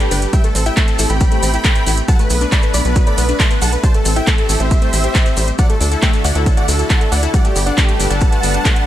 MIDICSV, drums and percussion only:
0, 0, Header, 1, 2, 480
1, 0, Start_track
1, 0, Tempo, 437956
1, 364, Time_signature, 4, 2, 24, 8
1, 9716, End_track
2, 0, Start_track
2, 0, Title_t, "Drums"
2, 3, Note_on_c, 9, 42, 53
2, 6, Note_on_c, 9, 70, 25
2, 113, Note_off_c, 9, 42, 0
2, 115, Note_off_c, 9, 70, 0
2, 123, Note_on_c, 9, 46, 108
2, 125, Note_on_c, 9, 70, 86
2, 233, Note_off_c, 9, 46, 0
2, 235, Note_off_c, 9, 70, 0
2, 243, Note_on_c, 9, 42, 58
2, 247, Note_on_c, 9, 70, 42
2, 352, Note_off_c, 9, 42, 0
2, 356, Note_off_c, 9, 70, 0
2, 362, Note_on_c, 9, 42, 81
2, 364, Note_on_c, 9, 36, 124
2, 367, Note_on_c, 9, 70, 51
2, 472, Note_off_c, 9, 42, 0
2, 473, Note_off_c, 9, 36, 0
2, 476, Note_off_c, 9, 70, 0
2, 483, Note_on_c, 9, 42, 54
2, 486, Note_on_c, 9, 70, 26
2, 592, Note_off_c, 9, 42, 0
2, 596, Note_off_c, 9, 70, 0
2, 603, Note_on_c, 9, 46, 114
2, 610, Note_on_c, 9, 70, 96
2, 713, Note_off_c, 9, 46, 0
2, 719, Note_off_c, 9, 70, 0
2, 723, Note_on_c, 9, 42, 54
2, 724, Note_on_c, 9, 70, 43
2, 833, Note_off_c, 9, 42, 0
2, 834, Note_off_c, 9, 70, 0
2, 840, Note_on_c, 9, 70, 51
2, 843, Note_on_c, 9, 39, 127
2, 843, Note_on_c, 9, 42, 83
2, 844, Note_on_c, 9, 36, 127
2, 950, Note_off_c, 9, 70, 0
2, 953, Note_off_c, 9, 36, 0
2, 953, Note_off_c, 9, 39, 0
2, 953, Note_off_c, 9, 42, 0
2, 961, Note_on_c, 9, 70, 29
2, 963, Note_on_c, 9, 42, 54
2, 1070, Note_off_c, 9, 70, 0
2, 1073, Note_off_c, 9, 42, 0
2, 1082, Note_on_c, 9, 70, 104
2, 1084, Note_on_c, 9, 46, 112
2, 1192, Note_off_c, 9, 70, 0
2, 1193, Note_off_c, 9, 46, 0
2, 1197, Note_on_c, 9, 70, 41
2, 1205, Note_on_c, 9, 42, 53
2, 1306, Note_off_c, 9, 70, 0
2, 1314, Note_off_c, 9, 42, 0
2, 1320, Note_on_c, 9, 70, 60
2, 1324, Note_on_c, 9, 36, 121
2, 1324, Note_on_c, 9, 42, 81
2, 1429, Note_off_c, 9, 70, 0
2, 1433, Note_off_c, 9, 36, 0
2, 1433, Note_off_c, 9, 42, 0
2, 1443, Note_on_c, 9, 42, 54
2, 1444, Note_on_c, 9, 70, 26
2, 1553, Note_off_c, 9, 42, 0
2, 1553, Note_off_c, 9, 70, 0
2, 1563, Note_on_c, 9, 46, 113
2, 1564, Note_on_c, 9, 70, 102
2, 1673, Note_off_c, 9, 46, 0
2, 1673, Note_off_c, 9, 70, 0
2, 1684, Note_on_c, 9, 42, 54
2, 1688, Note_on_c, 9, 70, 44
2, 1793, Note_off_c, 9, 42, 0
2, 1797, Note_off_c, 9, 70, 0
2, 1797, Note_on_c, 9, 70, 58
2, 1804, Note_on_c, 9, 36, 124
2, 1804, Note_on_c, 9, 39, 127
2, 1804, Note_on_c, 9, 42, 80
2, 1907, Note_off_c, 9, 70, 0
2, 1914, Note_off_c, 9, 36, 0
2, 1914, Note_off_c, 9, 39, 0
2, 1914, Note_off_c, 9, 42, 0
2, 1924, Note_on_c, 9, 42, 52
2, 1924, Note_on_c, 9, 70, 26
2, 2033, Note_off_c, 9, 42, 0
2, 2033, Note_off_c, 9, 70, 0
2, 2044, Note_on_c, 9, 46, 115
2, 2052, Note_on_c, 9, 70, 95
2, 2153, Note_off_c, 9, 46, 0
2, 2161, Note_off_c, 9, 70, 0
2, 2161, Note_on_c, 9, 70, 38
2, 2163, Note_on_c, 9, 42, 56
2, 2271, Note_off_c, 9, 70, 0
2, 2273, Note_off_c, 9, 42, 0
2, 2282, Note_on_c, 9, 70, 58
2, 2284, Note_on_c, 9, 36, 125
2, 2284, Note_on_c, 9, 42, 77
2, 2392, Note_off_c, 9, 70, 0
2, 2394, Note_off_c, 9, 36, 0
2, 2394, Note_off_c, 9, 42, 0
2, 2403, Note_on_c, 9, 42, 53
2, 2414, Note_on_c, 9, 70, 31
2, 2513, Note_off_c, 9, 42, 0
2, 2520, Note_off_c, 9, 70, 0
2, 2520, Note_on_c, 9, 70, 92
2, 2523, Note_on_c, 9, 46, 112
2, 2630, Note_off_c, 9, 70, 0
2, 2633, Note_off_c, 9, 46, 0
2, 2644, Note_on_c, 9, 42, 52
2, 2649, Note_on_c, 9, 70, 43
2, 2753, Note_off_c, 9, 42, 0
2, 2759, Note_off_c, 9, 70, 0
2, 2764, Note_on_c, 9, 36, 127
2, 2764, Note_on_c, 9, 39, 125
2, 2764, Note_on_c, 9, 42, 79
2, 2766, Note_on_c, 9, 70, 55
2, 2871, Note_off_c, 9, 70, 0
2, 2871, Note_on_c, 9, 70, 27
2, 2873, Note_off_c, 9, 39, 0
2, 2873, Note_off_c, 9, 42, 0
2, 2874, Note_off_c, 9, 36, 0
2, 2884, Note_on_c, 9, 42, 52
2, 2981, Note_off_c, 9, 70, 0
2, 2993, Note_off_c, 9, 42, 0
2, 3002, Note_on_c, 9, 70, 98
2, 3003, Note_on_c, 9, 46, 113
2, 3112, Note_off_c, 9, 70, 0
2, 3113, Note_off_c, 9, 46, 0
2, 3124, Note_on_c, 9, 42, 52
2, 3129, Note_on_c, 9, 70, 43
2, 3233, Note_off_c, 9, 42, 0
2, 3239, Note_off_c, 9, 70, 0
2, 3240, Note_on_c, 9, 70, 57
2, 3243, Note_on_c, 9, 42, 78
2, 3244, Note_on_c, 9, 36, 123
2, 3350, Note_off_c, 9, 70, 0
2, 3353, Note_off_c, 9, 36, 0
2, 3353, Note_off_c, 9, 42, 0
2, 3357, Note_on_c, 9, 70, 25
2, 3364, Note_on_c, 9, 42, 52
2, 3467, Note_off_c, 9, 70, 0
2, 3473, Note_off_c, 9, 42, 0
2, 3482, Note_on_c, 9, 70, 99
2, 3483, Note_on_c, 9, 46, 114
2, 3592, Note_off_c, 9, 46, 0
2, 3592, Note_off_c, 9, 70, 0
2, 3603, Note_on_c, 9, 42, 51
2, 3604, Note_on_c, 9, 70, 42
2, 3713, Note_off_c, 9, 42, 0
2, 3713, Note_off_c, 9, 70, 0
2, 3723, Note_on_c, 9, 39, 125
2, 3723, Note_on_c, 9, 42, 79
2, 3724, Note_on_c, 9, 36, 127
2, 3731, Note_on_c, 9, 70, 60
2, 3833, Note_off_c, 9, 36, 0
2, 3833, Note_off_c, 9, 39, 0
2, 3833, Note_off_c, 9, 42, 0
2, 3841, Note_off_c, 9, 70, 0
2, 3843, Note_on_c, 9, 42, 52
2, 3849, Note_on_c, 9, 70, 28
2, 3953, Note_off_c, 9, 42, 0
2, 3959, Note_off_c, 9, 70, 0
2, 3963, Note_on_c, 9, 46, 113
2, 3966, Note_on_c, 9, 70, 103
2, 4072, Note_off_c, 9, 46, 0
2, 4076, Note_off_c, 9, 70, 0
2, 4083, Note_on_c, 9, 42, 53
2, 4087, Note_on_c, 9, 70, 43
2, 4192, Note_off_c, 9, 42, 0
2, 4196, Note_off_c, 9, 70, 0
2, 4203, Note_on_c, 9, 42, 76
2, 4204, Note_on_c, 9, 36, 127
2, 4212, Note_on_c, 9, 70, 56
2, 4313, Note_off_c, 9, 36, 0
2, 4313, Note_off_c, 9, 42, 0
2, 4321, Note_off_c, 9, 70, 0
2, 4323, Note_on_c, 9, 42, 52
2, 4326, Note_on_c, 9, 70, 27
2, 4433, Note_off_c, 9, 42, 0
2, 4436, Note_off_c, 9, 70, 0
2, 4442, Note_on_c, 9, 46, 112
2, 4442, Note_on_c, 9, 70, 106
2, 4552, Note_off_c, 9, 46, 0
2, 4552, Note_off_c, 9, 70, 0
2, 4563, Note_on_c, 9, 42, 51
2, 4569, Note_on_c, 9, 70, 38
2, 4672, Note_off_c, 9, 42, 0
2, 4678, Note_off_c, 9, 70, 0
2, 4683, Note_on_c, 9, 39, 120
2, 4683, Note_on_c, 9, 42, 78
2, 4684, Note_on_c, 9, 36, 127
2, 4687, Note_on_c, 9, 70, 52
2, 4792, Note_off_c, 9, 39, 0
2, 4792, Note_off_c, 9, 42, 0
2, 4793, Note_off_c, 9, 36, 0
2, 4796, Note_off_c, 9, 70, 0
2, 4802, Note_on_c, 9, 70, 26
2, 4803, Note_on_c, 9, 42, 50
2, 4911, Note_off_c, 9, 70, 0
2, 4912, Note_off_c, 9, 42, 0
2, 4922, Note_on_c, 9, 46, 112
2, 4925, Note_on_c, 9, 70, 98
2, 5032, Note_off_c, 9, 46, 0
2, 5034, Note_off_c, 9, 70, 0
2, 5040, Note_on_c, 9, 70, 39
2, 5042, Note_on_c, 9, 42, 52
2, 5150, Note_off_c, 9, 70, 0
2, 5152, Note_off_c, 9, 42, 0
2, 5162, Note_on_c, 9, 42, 78
2, 5164, Note_on_c, 9, 36, 122
2, 5168, Note_on_c, 9, 70, 58
2, 5272, Note_off_c, 9, 42, 0
2, 5273, Note_off_c, 9, 36, 0
2, 5278, Note_off_c, 9, 70, 0
2, 5279, Note_on_c, 9, 70, 25
2, 5282, Note_on_c, 9, 42, 51
2, 5389, Note_off_c, 9, 70, 0
2, 5392, Note_off_c, 9, 42, 0
2, 5402, Note_on_c, 9, 46, 112
2, 5407, Note_on_c, 9, 70, 97
2, 5512, Note_off_c, 9, 46, 0
2, 5515, Note_off_c, 9, 70, 0
2, 5515, Note_on_c, 9, 70, 42
2, 5523, Note_on_c, 9, 42, 50
2, 5625, Note_off_c, 9, 70, 0
2, 5632, Note_off_c, 9, 42, 0
2, 5643, Note_on_c, 9, 39, 120
2, 5643, Note_on_c, 9, 42, 77
2, 5644, Note_on_c, 9, 36, 127
2, 5651, Note_on_c, 9, 70, 61
2, 5752, Note_off_c, 9, 39, 0
2, 5752, Note_off_c, 9, 42, 0
2, 5754, Note_off_c, 9, 36, 0
2, 5761, Note_off_c, 9, 70, 0
2, 5763, Note_on_c, 9, 42, 51
2, 5769, Note_on_c, 9, 70, 29
2, 5873, Note_off_c, 9, 42, 0
2, 5879, Note_off_c, 9, 70, 0
2, 5883, Note_on_c, 9, 46, 107
2, 5886, Note_on_c, 9, 70, 98
2, 5992, Note_off_c, 9, 46, 0
2, 5996, Note_off_c, 9, 70, 0
2, 6002, Note_on_c, 9, 70, 40
2, 6003, Note_on_c, 9, 42, 52
2, 6112, Note_off_c, 9, 70, 0
2, 6113, Note_off_c, 9, 42, 0
2, 6120, Note_on_c, 9, 70, 56
2, 6123, Note_on_c, 9, 42, 78
2, 6124, Note_on_c, 9, 36, 123
2, 6230, Note_off_c, 9, 70, 0
2, 6233, Note_off_c, 9, 42, 0
2, 6234, Note_off_c, 9, 36, 0
2, 6242, Note_on_c, 9, 70, 27
2, 6243, Note_on_c, 9, 42, 52
2, 6351, Note_off_c, 9, 70, 0
2, 6353, Note_off_c, 9, 42, 0
2, 6363, Note_on_c, 9, 46, 109
2, 6372, Note_on_c, 9, 70, 88
2, 6473, Note_off_c, 9, 46, 0
2, 6481, Note_off_c, 9, 70, 0
2, 6484, Note_on_c, 9, 42, 51
2, 6487, Note_on_c, 9, 70, 41
2, 6593, Note_off_c, 9, 42, 0
2, 6597, Note_off_c, 9, 70, 0
2, 6603, Note_on_c, 9, 39, 117
2, 6603, Note_on_c, 9, 42, 77
2, 6604, Note_on_c, 9, 36, 125
2, 6608, Note_on_c, 9, 70, 52
2, 6712, Note_off_c, 9, 39, 0
2, 6712, Note_off_c, 9, 42, 0
2, 6714, Note_off_c, 9, 36, 0
2, 6717, Note_off_c, 9, 70, 0
2, 6723, Note_on_c, 9, 42, 51
2, 6731, Note_on_c, 9, 70, 27
2, 6833, Note_off_c, 9, 42, 0
2, 6841, Note_off_c, 9, 70, 0
2, 6843, Note_on_c, 9, 46, 109
2, 6852, Note_on_c, 9, 70, 99
2, 6953, Note_off_c, 9, 46, 0
2, 6962, Note_off_c, 9, 70, 0
2, 6964, Note_on_c, 9, 42, 52
2, 6966, Note_on_c, 9, 70, 42
2, 7073, Note_off_c, 9, 42, 0
2, 7076, Note_off_c, 9, 70, 0
2, 7084, Note_on_c, 9, 36, 121
2, 7084, Note_on_c, 9, 42, 80
2, 7089, Note_on_c, 9, 70, 51
2, 7193, Note_off_c, 9, 42, 0
2, 7194, Note_off_c, 9, 36, 0
2, 7199, Note_off_c, 9, 70, 0
2, 7201, Note_on_c, 9, 70, 25
2, 7205, Note_on_c, 9, 42, 52
2, 7310, Note_off_c, 9, 70, 0
2, 7314, Note_off_c, 9, 42, 0
2, 7325, Note_on_c, 9, 46, 108
2, 7325, Note_on_c, 9, 70, 98
2, 7434, Note_off_c, 9, 46, 0
2, 7435, Note_off_c, 9, 70, 0
2, 7444, Note_on_c, 9, 42, 51
2, 7446, Note_on_c, 9, 70, 45
2, 7554, Note_off_c, 9, 42, 0
2, 7555, Note_off_c, 9, 70, 0
2, 7561, Note_on_c, 9, 70, 50
2, 7564, Note_on_c, 9, 36, 124
2, 7564, Note_on_c, 9, 39, 118
2, 7564, Note_on_c, 9, 42, 77
2, 7671, Note_off_c, 9, 70, 0
2, 7674, Note_off_c, 9, 36, 0
2, 7674, Note_off_c, 9, 39, 0
2, 7674, Note_off_c, 9, 42, 0
2, 7682, Note_on_c, 9, 70, 26
2, 7684, Note_on_c, 9, 42, 50
2, 7791, Note_off_c, 9, 70, 0
2, 7794, Note_off_c, 9, 42, 0
2, 7803, Note_on_c, 9, 46, 107
2, 7806, Note_on_c, 9, 70, 88
2, 7913, Note_off_c, 9, 46, 0
2, 7915, Note_off_c, 9, 70, 0
2, 7920, Note_on_c, 9, 70, 38
2, 7923, Note_on_c, 9, 42, 53
2, 8030, Note_off_c, 9, 70, 0
2, 8033, Note_off_c, 9, 42, 0
2, 8044, Note_on_c, 9, 36, 121
2, 8044, Note_on_c, 9, 42, 80
2, 8048, Note_on_c, 9, 70, 52
2, 8153, Note_off_c, 9, 36, 0
2, 8153, Note_off_c, 9, 42, 0
2, 8158, Note_off_c, 9, 70, 0
2, 8162, Note_on_c, 9, 70, 28
2, 8163, Note_on_c, 9, 42, 52
2, 8271, Note_off_c, 9, 70, 0
2, 8273, Note_off_c, 9, 42, 0
2, 8283, Note_on_c, 9, 46, 104
2, 8283, Note_on_c, 9, 70, 85
2, 8393, Note_off_c, 9, 46, 0
2, 8393, Note_off_c, 9, 70, 0
2, 8403, Note_on_c, 9, 42, 52
2, 8407, Note_on_c, 9, 70, 38
2, 8513, Note_off_c, 9, 42, 0
2, 8517, Note_off_c, 9, 70, 0
2, 8524, Note_on_c, 9, 36, 123
2, 8524, Note_on_c, 9, 39, 119
2, 8524, Note_on_c, 9, 42, 82
2, 8527, Note_on_c, 9, 70, 48
2, 8633, Note_off_c, 9, 36, 0
2, 8634, Note_off_c, 9, 39, 0
2, 8634, Note_off_c, 9, 42, 0
2, 8637, Note_off_c, 9, 70, 0
2, 8638, Note_on_c, 9, 70, 28
2, 8644, Note_on_c, 9, 42, 52
2, 8748, Note_off_c, 9, 70, 0
2, 8753, Note_off_c, 9, 42, 0
2, 8764, Note_on_c, 9, 46, 102
2, 8769, Note_on_c, 9, 70, 95
2, 8873, Note_off_c, 9, 46, 0
2, 8878, Note_off_c, 9, 70, 0
2, 8884, Note_on_c, 9, 42, 52
2, 8892, Note_on_c, 9, 70, 38
2, 8993, Note_off_c, 9, 42, 0
2, 8994, Note_off_c, 9, 70, 0
2, 8994, Note_on_c, 9, 70, 50
2, 9004, Note_on_c, 9, 36, 115
2, 9004, Note_on_c, 9, 42, 82
2, 9104, Note_off_c, 9, 70, 0
2, 9113, Note_off_c, 9, 36, 0
2, 9113, Note_off_c, 9, 42, 0
2, 9122, Note_on_c, 9, 70, 24
2, 9124, Note_on_c, 9, 42, 54
2, 9232, Note_off_c, 9, 70, 0
2, 9233, Note_off_c, 9, 42, 0
2, 9240, Note_on_c, 9, 70, 91
2, 9244, Note_on_c, 9, 46, 106
2, 9349, Note_off_c, 9, 70, 0
2, 9353, Note_off_c, 9, 46, 0
2, 9359, Note_on_c, 9, 70, 37
2, 9364, Note_on_c, 9, 42, 52
2, 9469, Note_off_c, 9, 70, 0
2, 9473, Note_off_c, 9, 42, 0
2, 9484, Note_on_c, 9, 36, 119
2, 9484, Note_on_c, 9, 39, 118
2, 9484, Note_on_c, 9, 42, 83
2, 9484, Note_on_c, 9, 70, 55
2, 9593, Note_off_c, 9, 36, 0
2, 9594, Note_off_c, 9, 39, 0
2, 9594, Note_off_c, 9, 42, 0
2, 9594, Note_off_c, 9, 70, 0
2, 9597, Note_on_c, 9, 70, 26
2, 9604, Note_on_c, 9, 42, 52
2, 9707, Note_off_c, 9, 70, 0
2, 9713, Note_off_c, 9, 42, 0
2, 9716, End_track
0, 0, End_of_file